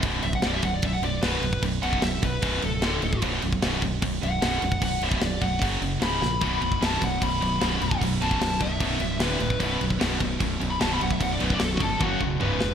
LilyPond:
<<
  \new Staff \with { instrumentName = "Lead electric guitar" } { \time 4/4 \key b \minor \tempo 4 = 150 r8 e''16 fis''16 d''16 e''16 fis''16 d''16 e''16 fis''16 d''8 b'4 | r8 fis''8 e''8 b'4 a'4. | r2 r8 fis''4. | fis''8 e''8 d''8 fis''8 r4 b''4~ |
b''8 b''8 a''8 fis''8 b''2 | r8 a''4 e''4. b'4 | b'8 r2 r16 b''16 a''16 b''16 fis''16 e''16 | fis''16 d''16 b'16 d''16 a'16 fis'16 a'8 fis'8 r8 b'4 | }
  \new Staff \with { instrumentName = "Distorted electric guitar" } { \clef bass \time 4/4 \key b \minor <b,, fis, b,>8 <b,, fis,>8 <b,, fis, b,>8 <b,, fis,>8 <b,, fis,>8 <b,, fis,>8 <b,, fis, b,>8 <b,, fis,>8 | <b,, fis,>8 <b,, fis, b,>8 <b,, fis,>8 <b,, fis,>8 <b,, fis, b,>8 <b,, fis,>8 <d, a, d>8 <d, a,>8 | <b,, fis, b,>8 <b,, fis,>8 <b,, fis, b,>8 <b,, fis,>8 <b,, fis,>8 <b,, fis,>8 <b,, fis, b,>8 <b,, fis,>8 | <b,, fis,>8 <b,, fis, b,>8 <b,, fis,>8 <b,, fis,>8 <fis, cis fis>8 <fis, cis>8 <cis, gis, cis>8 <cis, gis,>8 |
<b,, fis, b,>8 <b,, fis,>8 <b,, fis, b,>8 <b,, fis,>8 <b,, fis,>8 <b,, fis,>8 <b,, fis, b,>8 <b,, fis,>8 | <b,, fis,>8 <b,, fis, b,>8 <b,, fis,>8 <b,, fis,>8 <b,, fis, b,>8 <b,, fis,>8 <d, a, d>8 <d, a,>8 | <b,, fis, b,>8 <b,, fis,>8 <b,, fis, b,>8 <b,, fis,>8 <b,, fis,>8 <b,, fis,>8 <b,, fis, b,>8 <b,, fis,>8 | <b,, fis,>8 <b,, fis, b,>8 <b,, fis,>8 <b,, fis,>8 <fis, cis fis>8 <fis, cis>8 <cis, gis, cis>8 <cis, gis,>8 | }
  \new Staff \with { instrumentName = "Distorted electric guitar" } { \clef bass \time 4/4 \key b \minor <b,, fis, b,>8 <b,, fis,>8 <b,, fis, b,>8 <b,, fis,>8 <b,, fis,>8 <b,, fis,>8 <b,, fis, b,>8 <b,, fis,>8 | <b,, fis,>8 <b,, fis, b,>8 <b,, fis,>8 <b,, fis,>8 <b,, fis, b,>8 <b,, fis,>8 <d, a, d>8 <d, a,>8 | <b,, fis, b,>8 <b,, fis,>8 <b,, fis, b,>8 <b,, fis,>8 <b,, fis,>8 <b,, fis,>8 <b,, fis, b,>8 <b,, fis,>8 | <b,, fis,>8 <b,, fis, b,>8 <b,, fis,>8 <b,, fis,>8 <fis, cis fis>8 <fis, cis>8 <cis, gis, cis>8 <cis, gis,>8 |
<b,, fis, b,>8 <b,, fis,>8 <b,, fis, b,>8 <b,, fis,>8 <b,, fis,>8 <b,, fis,>8 <b,, fis, b,>8 <b,, fis,>8 | <b,, fis,>8 <b,, fis, b,>8 <b,, fis,>8 <b,, fis,>8 <b,, fis, b,>8 <b,, fis,>8 <d, a, d>8 <d, a,>8 | <b,, fis, b,>8 <b,, fis,>8 <b,, fis, b,>8 <b,, fis,>8 <b,, fis,>8 <b,, fis,>8 <b,, fis, b,>8 <b,, fis,>8 | <b,, fis,>8 <b,, fis, b,>8 <b,, fis,>8 <b,, fis,>8 <fis, cis fis>8 <fis, cis>8 <cis, gis, cis>8 <cis, gis,>8 | }
  \new Staff \with { instrumentName = "Distorted electric guitar" } { \clef bass \time 4/4 \key b \minor r1 | r1 | r1 | r1 |
<b,, fis, b,>4 <b,, fis, b,>8 <b,, fis, b,>8 <b,, fis, b,>4 <b,, fis, b,>8 <b,, fis, b,>8 | <b,, fis, b,>4 <b,, fis, b,>8 <b,, fis, b,>8 <b,, fis, b,>4 <d, a, d>8 <d, a, d>8 | <b,, fis, b,>4 <b,, fis, b,>8 <b,, fis, b,>8 <b,, fis, b,>4 <b,, fis, b,>8 <b,, fis, b,>8 | <b,, fis, b,>4 <b,, fis, b,>8 <b,, fis, b,>8 <fis, cis fis>4 <cis, gis, cis>8 <cis, gis, cis>8 | }
  \new Staff \with { instrumentName = "Fingered electric bass" } { \clef bass \time 4/4 \key b \minor b,,,8 b,,,8 b,,,8 b,,,8 b,,,8 b,,,8 b,,,8 b,,,8 | b,,,8 b,,,8 b,,,8 b,,,8 b,,,8 cis,,8 d,,8 d,,8 | b,,,8 b,,,8 b,,,8 b,,,8 b,,,8 b,,,8 b,,,8 b,,,8 | b,,,8 b,,,8 b,,,8 b,,,8 fis,,8 fis,,8 cis,,8 ais,,8 |
b,,,8 b,,,8 b,,,8 b,,,8 b,,,8 b,,,8 b,,,8 b,,,8 | b,,,8 b,,,8 b,,,8 b,,,8 b,,,8 cis,,8 d,,8 d,,8 | b,,,8 b,,,8 b,,,8 b,,,8 b,,,8 b,,,8 b,,,8 b,,,8 | b,,,8 b,,,8 b,,,8 g,,8 fis,,8 b,,,8 cis,,8 e,,8 | }
  \new DrumStaff \with { instrumentName = "Drums" } \drummode { \time 4/4 <cymc bd>8 cymc16 bd16 <cymc sn>8 <cymc bd>8 <cymc bd>8 cymc8 <cymc sn>8 cymc16 bd16 | <cymc bd>8 cymc16 bd16 <cymc sn>8 <cymc bd>8 <cymc bd>8 cymc8 <cymc sn>8 cymc16 bd16 | <cymc bd>8 cymc16 bd16 <cymc sn>8 <cymc bd>8 <cymc bd>8 cymc8 <cymc sn>8 cymc16 bd16 | <cymc bd>8 cymc16 bd16 <cymc sn>8 <cymc bd>8 <cymc bd>8 cymc8 <cymc sn>8 sn8 |
<cymc bd>8 cymc16 bd16 <cymc sn>8 <cymc bd>8 <cymc bd>8 cymc8 <cymc sn>8 cymc16 bd16 | <cymc bd>8 cymc16 bd16 <cymc sn>8 <cymc bd>8 <cymc bd>8 cymc8 <cymc sn>8 cymc16 bd16 | <cymc bd>8 cymc16 bd16 <cymc sn>8 <cymc bd>8 <cymc bd>8 cymc8 <cymc sn>8 cymc16 bd16 | <cymc bd>8 cymc16 bd16 <cymc sn>8 <cymc bd>8 <bd tommh>8 bd8 toml8 sn8 | }
>>